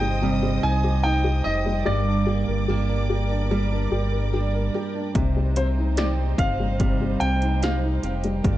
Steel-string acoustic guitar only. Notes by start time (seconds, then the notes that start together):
Already playing: C3 G3 C4 D#4 G4
0.23 G3
1.05 D#4
1.46 G4
1.86 G2
2.28 A#3
2.69 A#3 D4 G4
3.51 G3
4.33 D4
4.74 G4
5.15 C3
5.56 C4
5.97 C4 D#4 G4
6.80 G3
7.62 D#4
8.03 G4
8.44 G2